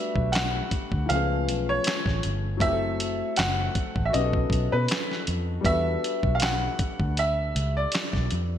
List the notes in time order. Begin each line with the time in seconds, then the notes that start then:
Already playing: G3 A3 B3 D4 F#4 E5
0.16 B1, kick
0.32 F#5, snare, clap, closed hi-hat
0.71 muted fingered electric bass stroke, kick, closed hi-hat
0.92 D2, kick
1.06 F3 A3 F5, closed hi-hat
1.10 C#2 B3 C#4
1.15 G#4
1.48 B1, closed hi-hat
1.69 C#5
1.84 snare, clap, closed hi-hat
2.06 A1, kick, snare
2.23 G1, closed hi-hat
2.57 F#3 A3, kick
2.61 F#1 C4 E4 E5, closed hi-hat
2.66 G4
2.72 A4
3.00 closed hi-hat
3.36 F#1 F#5, snare, clap, closed hi-hat
3.75 kick, closed hi-hat
3.96 A1, kick
4.05 F#4 E5
4.12 B1 B3 C#4 D#5, closed hi-hat
4.16 D#4 G4
4.25 A4
4.33 kick
4.50 B1, kick, closed hi-hat
4.72 B2 B4
4.88 snare, clap, closed hi-hat
5.11 snare
5.27 F2, closed hi-hat
5.61 G3 B3, kick
5.65 E2 D4 F#4 E5, closed hi-hat
5.70 A4
6.04 closed hi-hat
6.23 B1, kick
6.35 F5
6.40 F#5, snare, clap, closed hi-hat
6.79 muted fingered electric bass stroke, kick, closed hi-hat
7.00 D2, kick
7.17 E5, closed hi-hat
7.56 C#2, closed hi-hat
7.77 D5
7.92 snare, clap, closed hi-hat
8.13 B1, kick, snare
8.31 F2, closed hi-hat